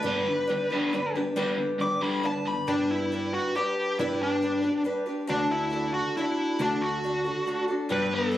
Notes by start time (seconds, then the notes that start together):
Already playing: B4
0.02 G1 G2 G3 D4 G4 B4
0.07 D3 G3
0.28 G2 D3
0.47 G2 D3 G3 D4 G4 B4
0.70 G2 D3 G3 D4 G4 B4
0.93 G2 D3 G3 D4 G4 B4
1.15 G2 D3 D4 G4 B4
1.36 G2 D3 G3 D4 G4 B4
1.58 G2 D3
1.79 G2 D3 G3 D4 G4 B4 D6
2.01 G2 D3 G3 B5
2.23 G2 D3 G3 D4 G4 B4 A5
2.45 G2 D3 B5
2.67 G1 G3 D4 G4 B4
2.91 E4
3.12 G3 D4 G4 B4
3.34 F#4
3.55 G3 D4 G4 B4
3.99 G1 G3 D4 E4 G4 B4
4.22 D4
4.42 G3 D4 G4 B4
4.62 D4 G4 B4
4.84 G3 D4 G4 B4
5.06 D4 G4 B4
5.27 D2 D3 A3 D4 F#4 A4
5.51 E4
5.70 A3 D4 F#4 A4
5.94 F#4
6.17 A3 D4 E4 F#4 A4
6.59 D2 D3 A3 D4 F#4 A4
6.81 F#4
7.04 A3 D4 F#4 A4
7.25 D4 F#4 A4
7.46 A3 D4 F#4 A4
7.68 D4 F#4 A4
7.89 G1 G2 G3 D4 G4 B4
8.12 B3 A4
8.32 G3 D4 G4 B4